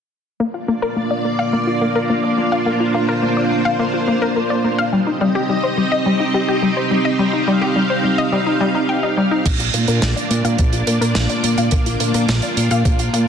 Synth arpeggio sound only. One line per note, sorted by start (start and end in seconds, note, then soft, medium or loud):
0.40 0.53 A#3 medium
0.54 0.63 F4 medium
0.68 0.81 A#3 loud
0.82 0.91 A#4 loud
0.96 1.02 A#3 medium
1.11 1.16 D5 medium
1.25 1.38 A#3 medium
1.39 1.44 F5 loud
1.53 1.66 A#3 medium
1.67 1.76 F4 medium
1.81 1.94 A#3 medium
1.95 2.04 A#4 loud
2.10 2.15 A#3 medium
2.24 2.29 D5 medium
2.38 2.51 A#3 medium
2.52 2.57 F5 loud
2.66 2.79 A#3 loud
2.80 2.89 F4 medium
2.94 3.08 A#3 loud
3.09 3.17 A#4 loud
3.23 3.28 A#3 medium
3.37 3.42 D5 medium
3.51 3.64 A#3 medium
3.65 3.70 F5 loud
3.79 3.92 A#3 loud
3.94 4.02 F4 medium
4.08 4.21 A#3 medium
4.22 4.31 A#4 loud
4.36 4.41 A#3 medium
4.50 4.55 D5 medium
4.64 4.77 A#3 medium
4.78 4.84 F5 loud
4.93 5.06 G3 medium
5.07 5.16 D#4 medium
5.21 5.34 G3 loud
5.35 5.44 G4 loud
5.49 5.54 G3 medium
5.63 5.69 C5 medium
5.77 5.91 G3 medium
5.92 5.97 D#5 loud
6.06 6.19 G3 loud
6.20 6.29 D#4 medium
6.34 6.47 G3 loud
6.48 6.57 G4 medium
6.63 6.68 G3 medium
6.77 6.82 C5 medium
6.91 7.04 G3 medium
7.05 7.10 D#5 loud
7.19 7.32 G3 medium
7.33 7.42 D#4 medium
7.47 7.60 G3 loud
7.61 7.70 G4 loud
7.76 7.81 G3 medium
7.90 7.95 C5 medium
8.04 8.17 G3 medium
8.18 8.23 D#5 loud
8.32 8.45 G3 loud
8.46 8.55 D#4 medium
8.61 8.69 G3 loud
8.75 8.80 D#4 medium
8.89 8.98 G5 medium
9.03 9.12 D#4 medium
9.17 9.26 G3 medium
9.31 9.44 D#4 medium
9.45 9.59 A#3 loud
9.60 9.68 F4 medium
9.74 9.87 A#3 loud
9.88 9.97 A#4 loud
10.02 10.07 A#3 medium
10.16 10.22 D5 medium
10.30 10.43 A#3 medium
10.45 10.50 F5 loud
10.59 10.72 A#3 loud
10.73 10.82 F4 medium
10.87 11.00 A#3 loud
11.01 11.10 A#4 loud
11.15 11.21 A#3 medium
11.29 11.35 D5 medium
11.44 11.57 A#3 medium
11.58 11.63 F5 loud
11.72 11.85 A#3 loud
11.86 11.95 F4 medium
12.00 12.13 A#3 medium
12.14 12.23 A#4 loud
12.29 12.34 A#3 medium
12.43 12.48 D5 medium
12.57 12.70 A#3 medium
12.71 12.76 F5 loud
12.85 12.98 A#3 loud
12.99 13.08 F4 medium
13.13 13.27 A#3 loud